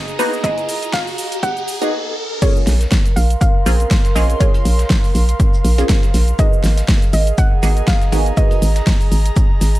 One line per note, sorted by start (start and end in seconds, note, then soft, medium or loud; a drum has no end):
0.00 0.16 A#3 medium
0.00 0.16 B3 medium
0.00 0.16 D#4 medium
0.00 0.16 F#4 medium
0.00 0.16 G#4 medium
0.00 1.93 G#4 medium
0.00 0.21 D#5 loud
0.00 1.93 D#5 medium
0.00 1.93 A#5 medium
0.00 riser medium
0.08 closed hi-hat soft
0.08 shaker soft
0.19 0.41 A#3 loud
0.19 0.41 B3 medium
0.19 0.41 D#4 medium
0.19 0.41 F#4 medium
0.19 0.41 G#4 loud
0.19 0.30 B4 medium
0.19 open hi-hat loud
0.19 shaker medium
0.33 shaker soft
0.44 1.78 A#3 medium
0.44 1.78 B3 medium
0.44 1.78 D#4 medium
0.44 1.78 F#4 medium
0.44 1.78 G#4 medium
0.44 0.95 D#5 loud
0.44 kick loud
0.44 closed hi-hat medium
0.44 shaker soft
0.58 closed hi-hat soft
0.58 shaker soft
0.69 open hi-hat loud
0.69 shaker medium
0.83 closed hi-hat medium
0.83 shaker soft
0.93 1.45 F5 loud
0.93 kick loud
0.93 snare loud
0.93 closed hi-hat medium
0.93 shaker soft
1.07 open hi-hat medium
1.07 shaker soft
1.18 open hi-hat loud
1.18 shaker medium
1.32 closed hi-hat medium
1.32 shaker soft
1.43 1.89 F#5 loud
1.43 kick loud
1.43 closed hi-hat medium
1.43 shaker soft
1.57 closed hi-hat soft
1.57 shaker soft
1.68 open hi-hat loud
1.68 shaker medium
1.81 1.93 A#3 medium
1.81 1.93 B3 medium
1.81 1.93 D#4 medium
1.81 1.93 F#4 medium
1.81 1.93 G#4 medium
1.81 closed hi-hat soft
1.81 shaker soft
2.42 3.63 G#3 medium
2.42 3.63 A#3 medium
2.42 3.63 C#4 medium
2.42 3.64 F4 medium
2.42 3.64 G#4 loud
2.42 7.99 A#4 medium
2.42 3.19 C#5 medium
2.42 kick loud
2.42 closed hi-hat medium
2.42 crash loud
2.42 shaker medium
2.42 shaker soft
2.56 shaker soft
2.65 2.86 A#1 loud
2.65 7.31 F5 medium
2.65 snare medium
2.65 open hi-hat loud
2.65 shaker medium
2.81 snare soft
2.81 closed hi-hat medium
2.81 shaker soft
2.92 kick loud
2.92 snare loud
2.92 closed hi-hat medium
2.92 open hi-hat medium
2.92 shaker soft
3.03 6.39 C6 medium
3.03 closed hi-hat soft
3.03 shaker soft
3.16 3.36 A#1 loud
3.16 3.40 F5 loud
3.16 open hi-hat loud
3.16 shaker medium
3.30 closed hi-hat medium
3.30 shaker soft
3.41 4.18 F5 loud
3.41 kick loud
3.41 closed hi-hat medium
3.41 shaker medium
3.41 shaker soft
3.66 3.85 A#1 loud
3.66 4.13 A#3 medium
3.66 4.13 C4 medium
3.66 4.13 C#4 medium
3.66 4.13 F4 medium
3.66 4.13 G#4 medium
3.66 open hi-hat loud
3.66 shaker medium
3.80 closed hi-hat soft
3.80 shaker soft
3.91 kick loud
3.91 snare loud
3.91 closed hi-hat medium
3.91 shaker medium
3.91 shaker soft
4.05 snare medium
4.05 closed hi-hat soft
4.05 shaker soft
4.15 4.35 A#1 medium
4.15 4.38 A#3 medium
4.15 4.38 C4 medium
4.15 4.38 C#4 medium
4.15 4.38 F4 medium
4.15 4.38 G#4 loud
4.15 4.39 D#5 medium
4.15 snare medium
4.15 open hi-hat loud
4.15 shaker medium
4.30 closed hi-hat soft
4.30 shaker soft
4.40 5.75 G#3 medium
4.40 5.75 A#3 medium
4.40 5.75 C#4 medium
4.40 5.75 F4 medium
4.40 5.75 G#4 medium
4.40 5.36 C#5 medium
4.40 kick loud
4.40 closed hi-hat medium
4.40 shaker medium
4.40 shaker soft
4.54 closed hi-hat soft
4.54 shaker soft
4.65 4.85 A#1 loud
4.65 open hi-hat loud
4.65 shaker medium
4.79 snare soft
4.79 closed hi-hat medium
4.79 shaker soft
4.90 kick loud
4.90 snare loud
4.90 closed hi-hat medium
4.90 shaker medium
4.90 shaker soft
5.04 open hi-hat medium
5.04 shaker soft
5.15 5.34 A#1 loud
5.15 open hi-hat loud
5.15 shaker medium
5.29 closed hi-hat medium
5.29 shaker soft
5.40 kick loud
5.40 closed hi-hat medium
5.40 shaker medium
5.40 shaker soft
5.54 shaker medium
5.65 5.84 A#1 loud
5.65 open hi-hat loud
5.65 shaker medium
5.78 6.36 A#3 medium
5.78 6.36 C4 medium
5.78 6.36 C#4 medium
5.78 6.36 F4 medium
5.78 6.36 G#4 medium
5.78 closed hi-hat soft
5.78 shaker medium
5.78 shaker soft
5.89 kick loud
5.89 snare loud
5.89 closed hi-hat medium
5.89 shaker medium
5.89 shaker soft
6.03 snare soft
6.03 closed hi-hat soft
6.03 shaker soft
6.14 6.33 A#1 medium
6.14 snare soft
6.14 open hi-hat loud
6.14 shaker medium
6.28 closed hi-hat soft
6.28 shaker soft
6.39 7.60 A#3 medium
6.39 7.60 B3 medium
6.39 7.60 D#4 medium
6.39 7.60 F#4 medium
6.39 7.60 G#4 loud
6.39 9.80 G#4 medium
6.39 7.12 D#5 loud
6.39 kick loud
6.39 closed hi-hat medium
6.39 shaker medium
6.39 shaker soft
6.53 shaker soft
6.64 6.83 G#1 loud
6.64 snare medium
6.64 open hi-hat loud
6.64 shaker medium
6.77 snare soft
6.77 closed hi-hat medium
6.77 shaker soft
6.88 kick loud
6.88 snare loud
6.88 closed hi-hat medium
6.88 open hi-hat medium
6.88 shaker soft
7.02 closed hi-hat soft
7.02 shaker soft
7.13 7.33 G#1 loud
7.13 7.39 D#5 loud
7.13 open hi-hat loud
7.13 shaker medium
7.18 9.80 D#5 medium
7.27 closed hi-hat medium
7.27 shaker soft
7.38 7.89 F#5 loud
7.38 9.80 A#5 medium
7.38 kick loud
7.38 closed hi-hat medium
7.38 shaker medium
7.38 shaker soft
7.63 7.82 G#1 loud
7.63 8.10 A#3 medium
7.63 8.10 B3 medium
7.63 8.10 D#4 medium
7.63 8.10 F#4 medium
7.63 8.10 G#4 medium
7.63 open hi-hat loud
7.63 shaker medium
7.77 closed hi-hat soft
7.77 shaker soft
7.87 8.39 F5 loud
7.87 kick loud
7.87 snare loud
7.87 closed hi-hat medium
7.87 shaker medium
7.87 shaker soft
8.01 snare medium
8.01 closed hi-hat soft
8.01 shaker soft
8.12 8.32 G#1 medium
8.12 8.35 A#3 medium
8.12 8.35 B3 medium
8.12 8.35 D#4 medium
8.12 8.35 F#4 medium
8.12 8.35 G#4 loud
8.12 snare medium
8.12 open hi-hat loud
8.12 shaker medium
8.26 closed hi-hat soft
8.26 shaker soft
8.37 9.72 A#3 medium
8.37 9.72 B3 medium
8.37 9.72 D#4 medium
8.37 9.72 F#4 medium
8.37 9.72 G#4 medium
8.37 9.80 D#5 medium
8.37 kick loud
8.37 closed hi-hat medium
8.37 shaker medium
8.37 shaker soft
8.51 closed hi-hat soft
8.51 shaker soft
8.62 8.81 G#1 loud
8.62 open hi-hat loud
8.62 shaker medium
8.76 snare soft
8.76 closed hi-hat medium
8.76 shaker soft
8.87 kick loud
8.87 snare loud
8.87 closed hi-hat medium
8.87 shaker medium
8.87 shaker soft
9.01 open hi-hat medium
9.01 shaker soft
9.12 9.31 G#1 loud
9.12 open hi-hat loud
9.12 shaker medium
9.26 closed hi-hat medium
9.26 shaker soft
9.36 kick loud
9.36 closed hi-hat medium
9.36 shaker medium
9.36 shaker soft
9.61 9.80 G#1 medium
9.61 snare medium
9.61 open hi-hat loud
9.61 shaker medium
9.75 closed hi-hat soft
9.75 shaker soft